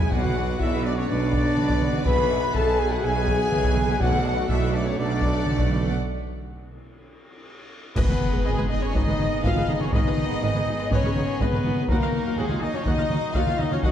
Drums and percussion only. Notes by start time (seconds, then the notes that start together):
0.12 taiko
0.24 taiko mid
0.60 taiko
1.33 taiko
1.57 taiko mid
1.69 taiko
1.81 taiko mid
1.93 taiko mid
2.06 taiko
2.18 taiko mid
2.54 taiko
3.27 taiko
3.52 taiko mid
3.64 taiko
3.77 taiko mid
3.88 taiko mid
4.00 taiko
4.13 taiko mid
4.49 taiko
5.21 taiko
5.46 taiko mid
5.59 taiko
5.71 taiko mid
5.83 taiko mid
7.96 concert bass drum, taiko, crash
8.09 taiko mid
8.21 taiko mid
8.58 taiko mid
8.82 taiko rim
8.95 taiko
9.07 taiko mid
9.20 taiko mid
9.44 taiko
9.56 taiko mid
9.68 taiko mid
9.81 taiko mid
9.93 taiko
10.05 taiko mid
10.18 taiko mid
10.55 taiko mid
10.80 taiko rim
10.91 taiko
11.04 taiko mid
11.16 taiko mid
11.28 taiko rim
11.41 taiko
11.53 taiko mid
11.64 taiko mid
11.76 taiko mid
11.88 taiko
12.00 taiko mid
12.12 taiko mid
12.49 taiko mid
12.86 taiko
12.98 taiko mid
13.10 taiko mid
13.34 taiko
13.47 taiko mid
13.59 taiko mid
13.71 taiko mid
13.83 taiko